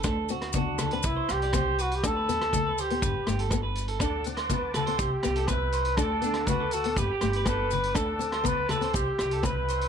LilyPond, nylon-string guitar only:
\new Staff \with { instrumentName = "Nylon-string guitar" } { \time 4/4 \key d \mixolydian \tempo 4 = 122 d'8 c'8 b8 r16 c'8 r8. c'8 r8 | d'8 b8 a8 r16 b8 r16 a8 b8 r8 | d'8 c'8 b8 r16 c'8 r16 b8 c'8 r8 | d'8 b8 a8 r16 b8 r16 a8 b8 r8 |
d'8 c'8 b8 r16 c'8 r8. c'8 r8 | }